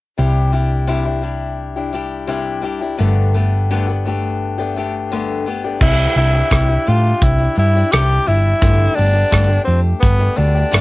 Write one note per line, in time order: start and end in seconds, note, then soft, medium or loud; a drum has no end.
0.17 2.96 C2 medium
0.17 0.53 C3 medium
0.17 0.51 G3 medium
0.17 0.51 D4 medium
0.17 0.52 E4 medium
0.17 0.53 G4 medium
0.52 0.86 G3 medium
0.52 0.86 D4 medium
0.52 0.87 E4 medium
0.52 0.88 G4 medium
0.87 1.05 C3 medium
0.87 1.05 G3 medium
0.87 1.06 D4 medium
0.87 1.05 E4 medium
0.87 1.04 G4 medium
1.05 1.22 D4 soft
1.05 1.23 E4 soft
1.05 1.23 G4 soft
1.22 1.76 G3 soft
1.22 1.76 D4 medium
1.22 1.76 E4 medium
1.22 1.75 G4 medium
1.76 1.93 D4 soft
1.76 1.93 E4 soft
1.76 1.93 G4 soft
1.93 2.26 G3 medium
1.93 2.27 D4 medium
1.93 2.27 E4 medium
1.93 2.28 G4 medium
2.27 2.64 C3 medium
2.27 2.61 G3 medium
2.27 2.62 D4 medium
2.27 2.62 E4 medium
2.27 2.63 G4 medium
2.62 2.81 G3 soft
2.62 2.81 D4 medium
2.62 2.81 E4 medium
2.62 2.80 G4 medium
2.81 2.97 D4 soft
2.81 2.98 E4 soft
2.81 2.98 G4 medium
2.98 5.77 G1 medium
2.98 3.34 G2 medium
2.98 3.34 D3 medium
2.98 3.33 A3 medium
2.98 3.34 B3 medium
2.98 3.34 D4 medium
2.98 3.35 G4 medium
3.34 3.70 A3 medium
3.34 3.70 B3 medium
3.34 3.70 D4 medium
3.34 3.70 G4 medium
3.71 3.88 G2 medium
3.71 3.88 D3 medium
3.71 3.88 A3 medium
3.71 3.88 B3 medium
3.71 3.88 D4 medium
3.71 3.87 G4 medium
3.88 4.04 A3 soft
3.88 4.05 B3 soft
3.88 4.06 D4 soft
3.88 4.05 G4 medium
4.05 4.58 A3 medium
4.05 4.59 B3 medium
4.05 4.58 D4 medium
4.05 4.57 G4 medium
4.58 4.75 A3 soft
4.58 4.76 B3 soft
4.58 4.76 D4 soft
4.58 4.76 G4 medium
4.76 5.11 A3 medium
4.76 5.11 B3 medium
4.76 5.12 D4 medium
4.76 5.12 G4 medium
5.12 5.46 G2 medium
5.12 5.47 D3 medium
5.12 5.45 A3 medium
5.12 5.46 B3 medium
5.12 5.46 D4 medium
5.12 5.47 G4 medium
5.46 5.64 A3 medium
5.46 5.64 B3 medium
5.46 5.64 D4 medium
5.46 5.63 G4 medium
5.64 5.82 A3 soft
5.64 5.82 B3 soft
5.64 5.81 D4 soft
5.64 5.81 G4 soft
5.81 6.06 C2 medium
5.81 6.17 C3 medium
5.81 6.14 G3 medium
5.81 6.15 D4 medium
5.81 6.14 E4 medium
5.81 6.16 E4 medium
5.81 6.17 G4 medium
5.81 kick medium
5.81 crash medium
6.16 6.41 C2 medium
6.16 6.34 G3 soft
6.16 6.34 D4 soft
6.16 6.33 E4 medium
6.16 6.89 E4 medium
6.16 6.32 G4 medium
6.33 6.50 D4 soft
6.33 6.50 E4 soft
6.33 6.51 G4 soft
6.51 6.76 C2 medium
6.51 6.69 C3 medium
6.51 6.69 G3 medium
6.51 6.69 D4 medium
6.51 6.68 E4 medium
6.51 6.67 G4 medium
6.51 kick medium
6.51 cross-stick medium
6.51 closed hi-hat medium
6.69 6.86 D4 soft
6.69 6.87 E4 soft
6.69 6.86 G4 soft
6.86 7.12 A2 medium
6.86 7.39 G3 medium
6.86 7.39 D4 medium
6.86 7.24 F4 medium
6.86 7.37 G4 medium
7.22 7.47 C2 medium
7.22 7.58 E4 medium
7.22 kick loud
7.22 closed hi-hat medium
7.39 7.55 D4 soft
7.39 7.55 E4 soft
7.39 7.56 G4 medium
7.55 7.82 G2 medium
7.55 7.74 G3 medium
7.55 7.74 D4 medium
7.55 7.74 E4 medium
7.55 7.93 E4 medium
7.55 7.73 G4 medium
7.74 7.92 D4 soft
7.74 7.92 E4 soft
7.74 7.92 G4 soft
7.91 8.18 C2 medium
7.91 8.27 C3 medium
7.91 8.25 G3 medium
7.91 8.26 D4 medium
7.91 8.26 E4 medium
7.91 8.28 G4 medium
7.91 8.27 G4 medium
7.91 cross-stick loud
7.91 closed hi-hat medium
8.26 8.52 G1 medium
8.26 8.61 G3 medium
8.26 8.61 D4 medium
8.26 8.96 E4 medium
8.26 8.62 E4 medium
8.26 8.61 G4 medium
8.61 8.87 G1 medium
8.61 8.97 G2 medium
8.61 8.97 D3 medium
8.61 8.95 A3 medium
8.61 8.96 B3 medium
8.61 8.96 D4 medium
8.61 8.97 G4 medium
8.61 kick medium
8.61 closed hi-hat medium
8.95 9.14 A3 soft
8.95 9.13 B3 medium
8.95 9.64 D4 medium
8.95 9.13 D4 medium
8.95 9.12 G4 medium
8.99 9.23 G1 medium
9.13 9.30 A3 soft
9.13 9.30 B3 soft
9.13 9.30 D4 soft
9.13 9.31 G4 soft
9.31 9.57 G1 medium
9.31 9.49 G2 medium
9.31 9.49 D3 medium
9.31 9.49 A3 medium
9.31 9.49 B3 medium
9.31 9.48 D4 medium
9.31 9.47 G4 medium
9.31 kick medium
9.31 cross-stick medium
9.31 closed hi-hat soft
9.48 9.64 A3 soft
9.48 9.68 B3 soft
9.48 9.66 D4 soft
9.48 9.67 G4 soft
9.64 9.92 F2 medium
9.64 10.19 A3 soft
9.64 9.80 C4 medium
9.64 10.19 D4 medium
9.64 10.18 G4 medium
10.00 10.27 G1 medium
10.00 10.39 B3 medium
10.00 kick medium
10.00 closed hi-hat medium
10.19 10.35 A3 soft
10.19 10.36 B3 soft
10.19 10.36 D4 soft
10.19 10.37 G4 soft
10.36 10.63 D2 medium
10.36 10.55 A3 medium
10.36 10.54 B3 medium
10.36 10.54 D4 medium
10.36 10.81 D4 medium
10.36 10.53 G4 medium
10.54 10.71 A3 soft
10.54 10.71 B3 soft
10.54 10.71 D4 soft
10.54 10.71 G4 soft
10.71 10.81 G1 medium
10.71 10.81 G2 medium
10.71 10.81 D3 medium
10.71 10.81 A3 medium
10.71 10.81 B3 medium
10.71 10.81 D4 medium
10.71 10.81 G4 medium
10.71 cross-stick loud
10.71 closed hi-hat medium